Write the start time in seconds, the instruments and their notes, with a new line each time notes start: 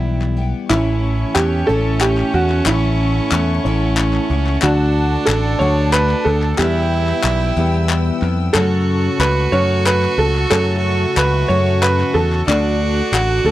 Already playing: picked electric bass B1, twelve-string acoustic guitar E2 B2 E3 G3 B3 G4, felt piano E2 E3 B3 E4 G4 E5, fiddle E4
0.22 clap
0.37 twelve-string acoustic guitar E3 G3 B3 G4
0.69 picked electric bass A1, felt piano A1 A2 A3 C#4 E4 C#5 E5, twelve-string acoustic guitar A2 E3 A3 C#4 E4, fiddle C#4, upright piano E4, string section A4 E5 C#6, clap
1.34 picked electric bass E2, twelve-string acoustic guitar E3 A3 C#4 E4, upright piano G4, clap
1.67 picked electric bass A1, twelve-string acoustic guitar A2 E3 A3 C#4 E4, felt piano A3 C#4 E4 C#5 E5, upright piano A4
2.01 upright piano G4, clap
2.18 clap
2.33 picked electric bass E2, twelve-string acoustic guitar A3 C#4 E4, upright piano F#4
2.50 clap
2.66 picked electric bass A1, felt piano A1 A2 A3 C#4 E4 C#5 E5, twelve-string acoustic guitar A2 E3 A3 C#4 E4, upright piano E4, string section F#5, clap
3.32 picked electric bass E2, twelve-string acoustic guitar E3 A3 C#4 E4, clap
3.64 picked electric bass A1, twelve-string acoustic guitar A2 E3 A3 C#4 E4, felt piano A3 C#4 E4 C#5 E5
3.97 clap
4.13 clap
4.30 picked electric bass C#2, twelve-string acoustic guitar A3 C#4 E4
4.47 clap
4.61 felt piano D2 D3 F#3 A3 D4 A4 D5, picked electric bass D2, twelve-string acoustic guitar D3 A3 D4 F#4, fiddle D4, upright piano F#4, string section A5, clap
5.26 picked electric bass A1, twelve-string acoustic guitar D3 A3 D4 F#4, upright piano A4, clap
5.59 picked electric bass D2, twelve-string acoustic guitar D3 A3 D4 F#4, felt piano F#3 A3 D4 A4 F#5, upright piano C#5
5.92 upright piano B4, clap
6.10 clap
6.25 picked electric bass D2, twelve-string acoustic guitar A3 D4 F#4, upright piano A4
6.42 clap
6.58 twelve-string acoustic guitar E2 B2 E3 G3 B3 G4, picked electric bass E2, felt piano E3 G3 B3 E4 B4 E5, fiddle E4, upright piano G4, string section B4 G5 E6, clap
7.07 clap
7.24 picked electric bass B1, twelve-string acoustic guitar E3 G3 B3 G4, clap
7.56 picked electric bass E2, twelve-string acoustic guitar E2 B2 E3 G3 B3 G4, felt piano G3 B3 E4 B4 E5
7.89 clap
8.22 picked electric bass F2, twelve-string acoustic guitar E3 G3 B3 G4, clap
8.53 felt piano F#1 F#2 F#3 A3 C#4 A4 C#5, twelve-string acoustic guitar F#2 C#3 F#3 A3 C#4 F#4, picked electric bass F#2, fiddle F#4, upright piano A4, string section A4 F#5 C#6, clap
9.19 picked electric bass C#2, twelve-string acoustic guitar F#3 A3 C#4 F#4, upright piano B4, clap
9.52 picked electric bass F#2, twelve-string acoustic guitar F#2 C#3 F#3 A3 C#4 F#4, felt piano F#3 A3 C#4 A4 C#5, upright piano C#5
9.86 upright piano B4, clap
10.03 clap
10.17 picked electric bass C#2, twelve-string acoustic guitar F#3 A3 C#4 F#4, upright piano A4
10.35 clap
10.50 felt piano F#1 F#2 F#3 A3 C#4 A4 C#5, twelve-string acoustic guitar F#2 C#3 F#3 A3 C#4 F#4, picked electric bass F#2, upright piano A4, string section E5, clap
11.16 picked electric bass C#2, twelve-string acoustic guitar F#3 A3 C#4 F#4, upright piano B4, clap
11.48 picked electric bass F#2, twelve-string acoustic guitar F#2 C#3 F#3 A3 C#4 F#4, felt piano F#3 A3 C#4 A4 C#5, upright piano C#5
11.82 upright piano B4, clap
12.00 clap
12.14 picked electric bass E2, twelve-string acoustic guitar F#3 A3 C#4 F#4, upright piano A4
12.32 clap
12.47 picked electric bass D2, felt piano D2 D3 F#3 A3 D4 A4 D5, twelve-string acoustic guitar D3 A3 D4 F#4, upright piano D4, fiddle F#4, string section F#5 D6, clap
13.12 picked electric bass A1, twelve-string acoustic guitar D3 A3 D4 F#4, upright piano F#4, clap
13.44 picked electric bass D2, twelve-string acoustic guitar D3 A3 D4 F#4, felt piano F#3 A3 D4 A4 D5, upright piano A4